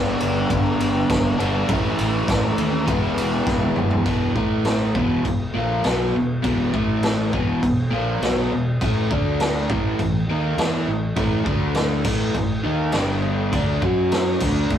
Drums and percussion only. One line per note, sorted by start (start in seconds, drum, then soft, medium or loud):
0.20 ride medium
0.50 kick loud
0.50 ride medium
0.80 ride medium
1.10 kick loud
1.10 snare loud
1.10 ride loud
1.40 ride medium
1.69 kick loud
1.69 ride loud
1.99 ride medium
2.28 kick loud
2.28 snare loud
2.28 ride loud
2.58 ride medium
2.88 kick loud
2.88 ride loud
3.18 ride medium
3.47 kick loud
3.47 snare medium
3.62 high tom medium
3.76 mid tom medium
3.91 floor tom loud
4.06 kick loud
4.06 crash medium
4.36 kick loud
4.65 snare loud
4.65 crash medium
4.95 kick loud
5.25 kick medium
5.25 crash medium
5.84 snare loud
5.84 crash medium
6.44 kick loud
6.44 crash medium
6.74 kick loud
7.03 snare loud
7.03 crash medium
7.33 kick loud
7.63 kick medium
7.63 crash medium
8.22 snare loud
8.22 crash medium
8.81 kick loud
8.81 crash medium
9.11 kick loud
9.40 snare loud
9.40 crash medium
9.70 kick loud
9.99 kick medium
9.99 crash medium
10.58 snare loud
10.58 crash medium
11.16 kick loud
11.16 crash medium
11.46 kick loud
11.75 snare loud
11.75 crash medium
12.04 kick loud
12.04 crash loud
12.35 kick medium
12.35 crash medium
12.92 snare loud
12.92 crash medium
13.53 kick loud
13.53 crash medium
13.82 kick loud
14.12 snare loud
14.12 crash medium
14.40 kick loud
14.40 crash loud
14.70 kick medium
14.70 crash medium